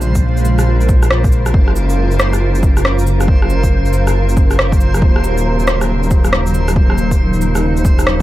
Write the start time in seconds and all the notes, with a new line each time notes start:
Already playing: A#1 C#3 G#3 F4 A#4 C5
0.02 cabasa
0.15 kick, shaker
0.37 shaker
0.45 cabasa
0.59 cross-stick, shaker
0.81 shaker
0.89 kick, cabasa
1.03 cross-stick, shaker
1.10 cross-stick
1.24 kick, shaker
1.32 cabasa
1.46 cross-stick, shaker
1.54 F#1, kick
1.68 cross-stick
1.76 cabasa
1.90 shaker
1.94 F#3
2.11 shaker
2.20 cross-stick, cabasa
2.33 cross-stick, shaker
2.55 shaker
2.63 kick, cabasa
2.77 cross-stick, shaker
2.85 cross-stick
2.99 shaker
3.07 cabasa
3.21 cross-stick, shaker
3.28 kick
3.42 cross-stick
3.50 cabasa
3.64 kick, shaker
3.85 shaker
3.93 cabasa
4.07 cross-stick, shaker
4.29 shaker
4.37 kick, cabasa
4.51 cross-stick, shaker
4.59 cross-stick
4.72 kick, shaker
4.81 cabasa
4.94 cross-stick, shaker
5.02 D#1, kick
5.15 D#4, cross-stick
5.24 cabasa
5.38 shaker
5.59 shaker
5.68 cross-stick, cabasa
5.81 cross-stick, shaker
6.03 shaker
6.11 kick, cabasa
6.24 cross-stick, shaker
6.33 cross-stick
6.46 shaker
6.54 cabasa
6.68 cross-stick, shaker
6.76 kick
6.90 cross-stick
6.98 cabasa
7.11 kick, shaker
7.33 shaker
7.41 cabasa
7.55 cross-stick, shaker
7.77 shaker
7.85 kick, cabasa
7.99 cross-stick, shaker
8.07 cross-stick